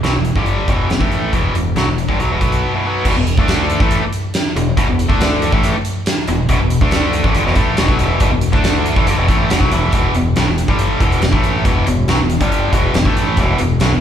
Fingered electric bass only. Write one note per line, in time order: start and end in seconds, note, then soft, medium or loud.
0.04 0.14 B1 medium
0.14 0.34 E1 medium
0.36 0.66 G1 medium
0.68 0.88 E1 medium
0.90 1.00 E1 medium
1.00 1.31 A1 medium
1.33 1.53 E1 medium
1.54 1.74 E1 medium
1.76 1.86 B1 medium
1.87 2.07 E1 medium
2.09 2.19 G1 medium
2.19 2.29 B1 medium
2.30 2.40 E1 medium
2.41 2.61 B1 medium
3.05 3.15 E1 medium
3.17 3.37 E1 medium
3.38 3.78 D2 medium
3.80 4.00 A1 medium
4.55 4.76 E1 medium
4.77 4.87 E1 medium
4.87 5.08 E1 medium
5.09 5.49 D2 medium
5.53 5.73 A1 medium
6.28 6.48 E1 medium
6.49 6.59 E1 medium
6.60 6.80 E1 medium
6.81 7.21 D2 medium
7.24 7.34 A1 medium
7.36 7.45 G1 medium
7.46 7.55 E1 loud
7.56 7.76 A1 medium
7.79 7.88 E1 loud
7.88 7.99 B1 medium
7.99 8.19 E1 medium
8.21 8.31 E1 medium
8.32 8.52 E1 medium
8.53 8.93 D2 medium
8.96 9.06 A1 medium
9.07 9.17 G1 medium
9.18 9.28 E1 medium
9.28 9.48 A1 loud
9.51 9.60 E1 medium
9.61 9.71 B1 medium
9.72 9.92 E1 medium
9.93 10.13 E1 medium
10.15 10.35 E1 medium
10.36 10.46 B1 medium
10.47 10.67 E1 medium
10.68 10.98 G1 medium
11.01 11.21 E1 medium
11.22 11.32 E1 medium
11.33 11.63 A1 medium
11.66 11.86 E1 medium
11.87 12.07 E1 medium
12.08 12.18 B1 medium
12.20 12.40 E1 medium
12.41 12.71 G1 medium
12.73 12.93 E1 medium
12.94 13.05 E1 medium
13.05 13.36 A1 medium
13.37 13.58 E1 medium
13.59 13.79 E1 medium
13.81 13.91 B1 medium
13.93 14.01 E1 medium